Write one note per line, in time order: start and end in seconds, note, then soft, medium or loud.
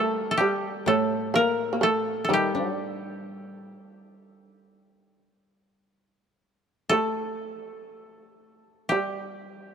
0.00 1.83 G3 medium
0.00 0.39 A3 medium
0.00 0.37 G4 loud
0.00 0.31 A4 medium
0.31 0.87 A4 medium
0.38 0.85 G3 medium
0.38 2.33 G4 medium
0.86 3.75 A2 medium
0.86 1.32 A3 medium
0.86 1.41 A4 medium
1.34 1.72 A#3 medium
1.34 1.89 A#4 medium
1.73 1.81 A#3 medium
1.81 2.27 A3 medium
1.81 2.24 A4 medium
2.24 4.15 A4 medium
2.29 2.75 D#3 medium
2.29 5.27 G3 soft
2.33 4.37 G4 medium
2.55 4.50 D4 soft
2.75 3.71 G3 medium
6.89 8.89 A3 medium
6.89 8.88 A4 medium
8.89 9.74 G3 medium
8.89 9.74 G4 medium